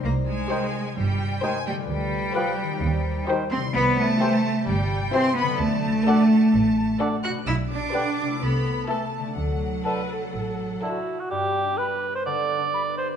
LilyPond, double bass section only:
\new Staff \with { instrumentName = "Double bass section" } { \clef bass \time 4/4 \key c \minor \tempo 4 = 128 c,4 r4 g,,4 r4 | d,4 r4 ees,4 r4 | \key g \major c,4 r4 g,,4 r4 | d,4 r4 a,,4 r4 |
b,,4 r4 c,4 r4 | d,4 r4 a,,4 r4 | r1 | }